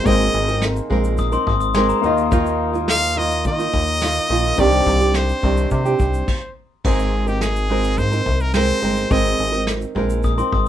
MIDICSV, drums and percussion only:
0, 0, Header, 1, 2, 480
1, 0, Start_track
1, 0, Tempo, 566038
1, 49, Time_signature, 4, 2, 24, 8
1, 9060, End_track
2, 0, Start_track
2, 0, Title_t, "Drums"
2, 49, Note_on_c, 9, 36, 113
2, 49, Note_on_c, 9, 82, 78
2, 134, Note_off_c, 9, 36, 0
2, 134, Note_off_c, 9, 82, 0
2, 168, Note_on_c, 9, 82, 51
2, 253, Note_off_c, 9, 82, 0
2, 408, Note_on_c, 9, 82, 48
2, 493, Note_off_c, 9, 82, 0
2, 522, Note_on_c, 9, 38, 119
2, 530, Note_on_c, 9, 82, 73
2, 607, Note_off_c, 9, 38, 0
2, 615, Note_off_c, 9, 82, 0
2, 646, Note_on_c, 9, 82, 54
2, 731, Note_off_c, 9, 82, 0
2, 768, Note_on_c, 9, 36, 91
2, 853, Note_off_c, 9, 36, 0
2, 884, Note_on_c, 9, 82, 65
2, 968, Note_off_c, 9, 82, 0
2, 997, Note_on_c, 9, 82, 61
2, 1007, Note_on_c, 9, 36, 82
2, 1082, Note_off_c, 9, 82, 0
2, 1092, Note_off_c, 9, 36, 0
2, 1122, Note_on_c, 9, 82, 57
2, 1207, Note_off_c, 9, 82, 0
2, 1246, Note_on_c, 9, 36, 98
2, 1331, Note_off_c, 9, 36, 0
2, 1361, Note_on_c, 9, 82, 56
2, 1446, Note_off_c, 9, 82, 0
2, 1478, Note_on_c, 9, 82, 61
2, 1479, Note_on_c, 9, 38, 107
2, 1562, Note_off_c, 9, 82, 0
2, 1564, Note_off_c, 9, 38, 0
2, 1605, Note_on_c, 9, 82, 51
2, 1689, Note_off_c, 9, 82, 0
2, 1724, Note_on_c, 9, 82, 51
2, 1809, Note_off_c, 9, 82, 0
2, 1844, Note_on_c, 9, 82, 44
2, 1928, Note_off_c, 9, 82, 0
2, 1967, Note_on_c, 9, 36, 124
2, 1967, Note_on_c, 9, 82, 76
2, 2052, Note_off_c, 9, 36, 0
2, 2052, Note_off_c, 9, 82, 0
2, 2087, Note_on_c, 9, 82, 49
2, 2172, Note_off_c, 9, 82, 0
2, 2328, Note_on_c, 9, 82, 48
2, 2413, Note_off_c, 9, 82, 0
2, 2441, Note_on_c, 9, 38, 111
2, 2449, Note_on_c, 9, 82, 75
2, 2526, Note_off_c, 9, 38, 0
2, 2534, Note_off_c, 9, 82, 0
2, 2568, Note_on_c, 9, 82, 53
2, 2653, Note_off_c, 9, 82, 0
2, 2805, Note_on_c, 9, 82, 68
2, 2890, Note_off_c, 9, 82, 0
2, 2918, Note_on_c, 9, 82, 59
2, 2926, Note_on_c, 9, 36, 79
2, 3003, Note_off_c, 9, 82, 0
2, 3011, Note_off_c, 9, 36, 0
2, 3048, Note_on_c, 9, 82, 57
2, 3133, Note_off_c, 9, 82, 0
2, 3168, Note_on_c, 9, 36, 100
2, 3252, Note_off_c, 9, 36, 0
2, 3287, Note_on_c, 9, 82, 53
2, 3372, Note_off_c, 9, 82, 0
2, 3403, Note_on_c, 9, 82, 62
2, 3405, Note_on_c, 9, 38, 117
2, 3488, Note_off_c, 9, 82, 0
2, 3490, Note_off_c, 9, 38, 0
2, 3523, Note_on_c, 9, 82, 54
2, 3608, Note_off_c, 9, 82, 0
2, 3762, Note_on_c, 9, 82, 48
2, 3846, Note_off_c, 9, 82, 0
2, 3882, Note_on_c, 9, 82, 78
2, 3884, Note_on_c, 9, 36, 124
2, 3967, Note_off_c, 9, 82, 0
2, 3969, Note_off_c, 9, 36, 0
2, 4003, Note_on_c, 9, 82, 51
2, 4088, Note_off_c, 9, 82, 0
2, 4124, Note_on_c, 9, 36, 90
2, 4209, Note_off_c, 9, 36, 0
2, 4245, Note_on_c, 9, 82, 49
2, 4330, Note_off_c, 9, 82, 0
2, 4359, Note_on_c, 9, 38, 109
2, 4367, Note_on_c, 9, 82, 75
2, 4443, Note_off_c, 9, 38, 0
2, 4452, Note_off_c, 9, 82, 0
2, 4484, Note_on_c, 9, 82, 54
2, 4569, Note_off_c, 9, 82, 0
2, 4606, Note_on_c, 9, 36, 91
2, 4690, Note_off_c, 9, 36, 0
2, 4724, Note_on_c, 9, 82, 69
2, 4809, Note_off_c, 9, 82, 0
2, 4838, Note_on_c, 9, 82, 58
2, 4845, Note_on_c, 9, 36, 82
2, 4922, Note_off_c, 9, 82, 0
2, 4930, Note_off_c, 9, 36, 0
2, 4967, Note_on_c, 9, 82, 54
2, 5051, Note_off_c, 9, 82, 0
2, 5081, Note_on_c, 9, 82, 64
2, 5085, Note_on_c, 9, 36, 97
2, 5165, Note_off_c, 9, 82, 0
2, 5170, Note_off_c, 9, 36, 0
2, 5204, Note_on_c, 9, 82, 56
2, 5289, Note_off_c, 9, 82, 0
2, 5325, Note_on_c, 9, 36, 105
2, 5325, Note_on_c, 9, 49, 93
2, 5409, Note_off_c, 9, 49, 0
2, 5410, Note_off_c, 9, 36, 0
2, 5806, Note_on_c, 9, 36, 122
2, 5806, Note_on_c, 9, 49, 99
2, 5891, Note_off_c, 9, 36, 0
2, 5891, Note_off_c, 9, 49, 0
2, 5927, Note_on_c, 9, 82, 50
2, 6011, Note_off_c, 9, 82, 0
2, 6168, Note_on_c, 9, 82, 46
2, 6252, Note_off_c, 9, 82, 0
2, 6283, Note_on_c, 9, 38, 120
2, 6292, Note_on_c, 9, 82, 81
2, 6368, Note_off_c, 9, 38, 0
2, 6377, Note_off_c, 9, 82, 0
2, 6410, Note_on_c, 9, 82, 52
2, 6494, Note_off_c, 9, 82, 0
2, 6649, Note_on_c, 9, 82, 66
2, 6734, Note_off_c, 9, 82, 0
2, 6761, Note_on_c, 9, 82, 61
2, 6767, Note_on_c, 9, 36, 85
2, 6846, Note_off_c, 9, 82, 0
2, 6852, Note_off_c, 9, 36, 0
2, 6888, Note_on_c, 9, 82, 53
2, 6972, Note_off_c, 9, 82, 0
2, 7006, Note_on_c, 9, 36, 93
2, 7091, Note_off_c, 9, 36, 0
2, 7122, Note_on_c, 9, 82, 50
2, 7206, Note_off_c, 9, 82, 0
2, 7238, Note_on_c, 9, 82, 72
2, 7239, Note_on_c, 9, 38, 118
2, 7322, Note_off_c, 9, 82, 0
2, 7324, Note_off_c, 9, 38, 0
2, 7364, Note_on_c, 9, 82, 51
2, 7449, Note_off_c, 9, 82, 0
2, 7603, Note_on_c, 9, 82, 48
2, 7688, Note_off_c, 9, 82, 0
2, 7723, Note_on_c, 9, 82, 80
2, 7725, Note_on_c, 9, 36, 127
2, 7808, Note_off_c, 9, 82, 0
2, 7809, Note_off_c, 9, 36, 0
2, 7842, Note_on_c, 9, 82, 48
2, 7927, Note_off_c, 9, 82, 0
2, 8086, Note_on_c, 9, 82, 51
2, 8171, Note_off_c, 9, 82, 0
2, 8199, Note_on_c, 9, 38, 127
2, 8207, Note_on_c, 9, 82, 75
2, 8284, Note_off_c, 9, 38, 0
2, 8292, Note_off_c, 9, 82, 0
2, 8323, Note_on_c, 9, 82, 55
2, 8407, Note_off_c, 9, 82, 0
2, 8445, Note_on_c, 9, 36, 93
2, 8530, Note_off_c, 9, 36, 0
2, 8563, Note_on_c, 9, 82, 70
2, 8647, Note_off_c, 9, 82, 0
2, 8675, Note_on_c, 9, 82, 56
2, 8685, Note_on_c, 9, 36, 80
2, 8759, Note_off_c, 9, 82, 0
2, 8769, Note_off_c, 9, 36, 0
2, 8806, Note_on_c, 9, 82, 58
2, 8890, Note_off_c, 9, 82, 0
2, 8925, Note_on_c, 9, 36, 102
2, 9010, Note_off_c, 9, 36, 0
2, 9060, End_track
0, 0, End_of_file